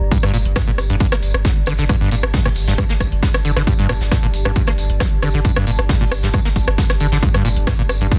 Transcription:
Already playing: G4 D5 A#5
0.01 G1
0.11 G2, kick, closed hi-hat, tambourine
0.23 G2, cross-stick, closed hi-hat
0.28 A5
0.34 G1 A#2, open hi-hat, tambourine
0.45 G1, closed hi-hat
0.56 G2, kick, cross-stick, snare, closed hi-hat, tambourine
0.68 A#2
0.78 G1, cross-stick, open hi-hat, tambourine
0.90 G1 G2, closed hi-hat
1.00 G2, kick, closed hi-hat, tambourine
1.12 A#3, cross-stick, snare
1.22 G1, open hi-hat, tambourine
1.34 G1, cross-stick, closed hi-hat
1.45 F#2, kick, snare, closed hi-hat, tambourine
1.66 G1 D3, cross-stick, open hi-hat, tambourine
1.78 G1 D3, snare, open hi-hat
1.89 G2, kick, cross-stick, closed hi-hat, tambourine
2.01 G2
2.11 G1 A#2, open hi-hat, tambourine
2.23 G1, cross-stick, closed hi-hat
2.34 G2, kick, snare, closed hi-hat, open hi-hat
2.45 A#2, cross-stick
2.55 G1, open hi-hat, tambourine
2.68 G1 G2, snare, closed hi-hat
2.78 G2, kick, cross-stick, closed hi-hat, tambourine
2.89 A#3, snare
3.00 G1, kick, cross-stick, open hi-hat, tambourine
3.12 G1, closed hi-hat
3.23 F#2, kick, snare, closed hi-hat, tambourine
3.34 cross-stick, snare
3.45 G1 D3, open hi-hat, tambourine
3.56 G1 D3, cross-stick, snare, closed hi-hat
3.67 G2, kick, closed hi-hat, tambourine
3.78 G2, closed hi-hat
3.89 G1 A#2, cross-stick, open hi-hat, tambourine
4.01 G1, snare, closed hi-hat
4.11 G2, kick, cross-stick, snare, closed hi-hat, tambourine
4.23 A#2
4.33 G1, open hi-hat, tambourine
4.45 G1 G2, cross-stick, closed hi-hat
4.56 G2, kick, closed hi-hat, tambourine
4.67 A#3, cross-stick, snare
4.78 G1, open hi-hat, tambourine
4.90 G1, closed hi-hat
5.00 F#2, kick, cross-stick, snare, closed hi-hat, tambourine
5.22 G1 D3, cross-stick, open hi-hat, tambourine
5.34 G1 D3, open hi-hat
5.45 G2, kick, closed hi-hat, tambourine
5.56 G2, cross-stick
5.67 G1 A#2, open hi-hat, tambourine
5.79 G1, cross-stick, closed hi-hat
5.89 G2, kick, snare, closed hi-hat, open hi-hat
6.01 A#2
6.12 G1, cross-stick, open hi-hat, tambourine
6.23 G1 G2, snare, closed hi-hat
6.34 G2, kick, cross-stick, closed hi-hat, tambourine
6.45 A#3, snare
6.56 G1, kick, open hi-hat, tambourine
6.68 G1, cross-stick, closed hi-hat
6.78 F#2, kick, snare, closed hi-hat, tambourine
6.89 cross-stick, snare
7.00 G1 D3, open hi-hat, tambourine
7.12 G1 D3, snare, closed hi-hat
7.23 G2, kick, closed hi-hat, tambourine
7.34 G2, cross-stick, closed hi-hat
7.39 D6
7.45 G1 A#2, open hi-hat, tambourine
7.56 G1, closed hi-hat
7.67 G2, kick, cross-stick, snare, closed hi-hat, tambourine
7.79 A#2
7.89 G1, cross-stick, open hi-hat, tambourine
8.01 G1 G2, closed hi-hat
8.11 G2, kick, closed hi-hat, tambourine

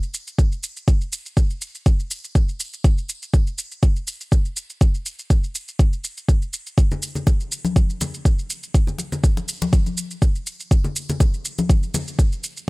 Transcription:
0.03 shaker
0.14 shaker
0.27 shaker
0.38 kick, shaker
0.52 shaker
0.63 shaker
0.77 shaker
0.88 kick, shaker
1.01 shaker
1.12 shaker
1.26 shaker
1.37 kick, shaker
1.50 shaker
1.62 shaker
1.75 shaker
1.86 kick, shaker
2.00 shaker
2.11 shaker
2.24 shaker
2.35 kick, shaker
2.49 shaker
2.60 shaker
2.73 shaker
2.84 kick, shaker
2.98 shaker
3.09 shaker
3.22 shaker
3.34 kick, shaker
3.47 shaker
3.58 shaker
3.72 shaker
3.83 kick, shaker
3.96 shaker
4.07 shaker
4.21 shaker
4.32 kick, shaker
4.45 shaker
4.57 shaker
4.70 shaker
4.81 kick, shaker
4.95 shaker
5.06 shaker
5.19 shaker
5.30 kick, shaker
5.44 shaker
5.55 shaker
5.68 shaker
5.79 kick, shaker
5.93 shaker
6.04 shaker
6.17 shaker
6.28 kick, shaker
6.42 shaker
6.53 shaker
6.67 shaker
6.78 kick, shaker
6.91 low conga, shaker
7.02 shaker
7.15 low conga, shaker
7.27 kick, muted conga, shaker
7.40 shaker
7.52 shaker
7.65 high conga, shaker
7.76 kick, shaker
7.90 shaker
8.01 muted conga, low conga, shaker
8.14 shaker
8.25 kick, shaker
8.39 shaker
8.50 shaker
8.63 shaker
8.74 kick, shaker
8.87 low conga, shaker
8.98 muted conga, shaker
9.12 low conga, shaker
9.24 kick, shaker
9.37 muted conga, shaker
9.48 shaker
9.62 muted conga, high conga, shaker
9.73 kick, shaker
9.86 high conga, shaker
9.97 shaker
10.11 shaker
10.22 kick, shaker
10.35 shaker
10.47 shaker
10.60 shaker
10.71 kick, shaker
10.84 low conga, shaker
10.96 shaker
11.09 low conga, shaker
11.20 kick, muted conga, shaker
11.34 shaker
11.45 shaker
11.58 high conga, shaker
11.70 kick, shaker
11.83 shaker
11.94 muted conga, low conga, shaker
12.08 shaker
12.19 kick, shaker
12.32 shaker
12.44 shaker
12.57 shaker

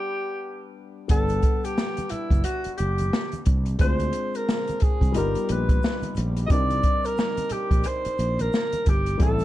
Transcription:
Already playing: G3 B3 D4 G4 B4 F#5
1.08 G1 G3 B3 D4 A4 F#5, kick, closed hi-hat, shaker
1.13 B4
1.29 closed hi-hat, high conga, shaker
1.42 kick, closed hi-hat, shaker
1.64 G4, closed hi-hat, shaker
1.78 snare, shaker
1.97 closed hi-hat, high conga, shaker
2.09 E4, closed hi-hat, low conga, shaker
2.30 F#1, kick, closed hi-hat, shaker
2.44 F#4, closed hi-hat, shaker
2.64 muted fretless electric bass stroke, closed hi-hat, shaker
2.75 F#4 G4, closed hi-hat
2.79 F#1, shaker
2.98 closed hi-hat, high conga, shaker
3.13 snare, shaker
3.32 closed hi-hat, high conga, shaker
3.46 C2, kick, closed hi-hat, low conga, shaker
3.66 closed hi-hat, shaker
3.79 D2 G#3 C4 D4 F4 C5, kick, closed hi-hat, shaker
3.83 C5
4.00 closed hi-hat, high conga, shaker
4.13 closed hi-hat, shaker
4.35 A#4, closed hi-hat, shaker
4.49 snare, shaker
4.67 closed hi-hat, high conga, shaker
4.80 G#4, kick, closed hi-hat, low conga, shaker
5.01 C2, kick, closed hi-hat, shaker
5.12 G1 G3 A#3 D#4 F4, closed hi-hat, shaker
5.17 B3 G4 A#4
5.35 muted fretless electric bass stroke, closed hi-hat, shaker
5.49 A#1 B4, closed hi-hat, shaker
5.69 kick, closed hi-hat, high conga, shaker
5.83 snare, shaker
6.03 closed hi-hat, high conga, shaker
6.15 A#1, closed hi-hat, low conga, shaker
6.37 closed hi-hat, shaker
6.46 C2 G3 C4 D#5, kick, closed hi-hat
6.50 D4 D#4 A#4 D5, shaker
6.70 closed hi-hat, high conga, shaker
6.83 kick, closed hi-hat, shaker
7.04 A#4, closed hi-hat, shaker
7.17 snare, shaker
7.37 closed hi-hat, high conga, shaker
7.49 G4, closed hi-hat, low conga, shaker
7.71 A#1, kick, closed hi-hat, shaker
7.84 C5, closed hi-hat, shaker
8.05 muted fretless electric bass stroke, closed hi-hat, shaker
8.19 A#1, closed hi-hat, shaker
8.39 A#4, closed hi-hat, high conga, shaker
8.53 snare, shaker
8.72 closed hi-hat, high conga, shaker
8.86 G1 G4, kick, closed hi-hat, low conga, shaker
9.06 closed hi-hat, shaker
9.18 A1 G3 A3 C4 E4, kick, closed hi-hat, shaker
9.22 A4
9.39 closed hi-hat, high conga, shaker

